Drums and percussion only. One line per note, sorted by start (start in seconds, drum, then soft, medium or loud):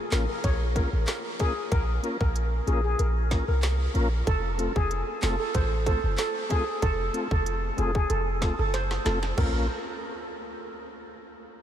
0.12 snare loud
0.12 clap medium
0.12 closed hi-hat soft
0.44 kick loud
0.44 closed hi-hat medium
0.76 kick medium
0.76 closed hi-hat medium
1.07 snare loud
1.07 clap loud
1.07 closed hi-hat medium
1.39 kick medium
1.39 closed hi-hat medium
1.72 kick loud
1.72 closed hi-hat medium
2.04 closed hi-hat medium
2.21 kick loud
2.36 closed hi-hat medium
2.67 closed hi-hat medium
2.99 closed hi-hat medium
3.31 kick medium
3.31 snare medium
3.31 closed hi-hat medium
3.63 snare loud
3.63 clap loud
3.63 closed hi-hat medium
3.95 closed hi-hat medium
4.27 kick loud
4.27 closed hi-hat medium
4.59 closed hi-hat medium
4.76 kick loud
4.91 closed hi-hat medium
5.22 snare loud
5.22 clap loud
5.22 closed hi-hat soft
5.54 kick loud
5.54 closed hi-hat medium
5.86 kick medium
5.86 closed hi-hat medium
6.18 snare loud
6.18 clap loud
6.18 closed hi-hat medium
6.50 kick medium
6.50 closed hi-hat medium
6.82 kick loud
6.82 closed hi-hat medium
7.14 closed hi-hat medium
7.31 kick loud
7.46 closed hi-hat medium
7.78 closed hi-hat medium
7.95 kick loud
8.10 closed hi-hat medium
8.42 kick medium
8.42 snare medium
8.42 closed hi-hat medium
8.74 snare medium
8.74 closed hi-hat medium
8.91 snare medium
9.06 snare medium
9.06 closed hi-hat medium
9.23 snare medium
9.38 kick loud
9.38 floor tom loud
9.38 crash medium